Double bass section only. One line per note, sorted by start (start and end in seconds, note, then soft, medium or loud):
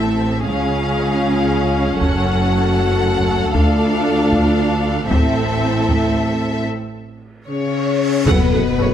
0.00 0.43 A1 soft
0.46 2.00 C#2 soft
2.00 3.52 F#1 medium
3.55 5.07 D2 medium
5.11 6.69 A1 medium
8.26 8.34 F#1 medium
8.53 8.61 F#1 soft
8.79 8.87 F#1 soft